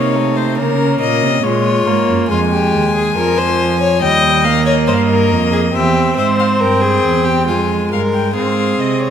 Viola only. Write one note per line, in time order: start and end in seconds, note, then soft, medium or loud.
0.00 0.17 A#3 medium
0.16 0.60 A3 medium
0.59 1.43 A#3 medium
1.44 1.88 G#3 medium
1.87 2.32 A#3 medium
2.30 3.18 G#3 medium
3.16 4.01 F3 medium
4.02 4.46 G3 medium
4.45 5.75 A#3 medium
5.75 7.45 C4 medium
7.49 8.34 G#3 medium
8.36 9.10 C4 medium